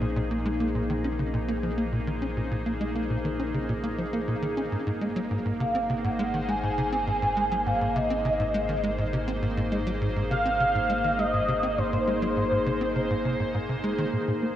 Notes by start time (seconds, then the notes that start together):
Already playing: A#1 A#3 D#4 G#4 C5
0.01 A#2
0.16 A#2
0.31 A#3
0.45 G#3
0.60 A#3
0.75 A#2
0.90 D#3
1.04 C#4
1.19 C#3
1.34 A#2
1.48 A#3
1.63 F3
1.78 A#3
1.92 A#2
2.07 D#3
2.22 C#4
2.37 A#2
2.51 A#2
2.66 A#3
2.81 G#3
2.95 A#3
3.10 A#2
3.25 D#3
3.40 C#4
3.54 C#3
3.69 A#2
3.84 A#3
3.98 F3
4.13 A#3
4.28 A#2
4.42 D#3
4.57 C#4
4.72 G#1 G#2 A#3
4.87 G#2
5.01 G#3
5.16 F#3
5.31 G#2
5.45 G#2 D#4 G#4
5.60 C3 F5
5.69 C5
5.75 C4
5.89 C3 F#5
6.04 G#2
6.19 G#3
6.34 D#3
6.48 G#3 G#5
6.63 G#2
6.78 C3
6.93 C4
7.07 G#2 G#5
7.22 G#2
7.37 G#3
7.51 F#3
7.66 G#2 F5
7.81 G#2
7.95 C3 D#5
8.10 C4
8.25 C3
8.40 G#2
8.54 G#3
8.69 D#3
8.84 G#3
8.98 G#2
9.13 C3
9.28 C4
9.43 G#2
9.57 G#2
9.72 G#3
9.87 F#3
10.01 G#2
10.16 G#2
10.31 C3 F5
10.46 C4
10.60 C3
10.75 G#2
10.90 G#3
11.04 D#3
11.19 G#3 D#5
11.34 G#2
11.48 C3
11.63 C4
11.78 G#2 C5
11.93 G#2
12.07 G#3
12.22 F#3
12.37 G#2
12.52 G#2
12.66 C3
12.81 C4
12.96 C3
13.10 G#2
13.25 C3
13.40 G#2
13.54 G#2
13.69 C3
13.84 G#3
13.98 D#3
14.13 A#1 A#2
14.28 A#2
14.43 A#3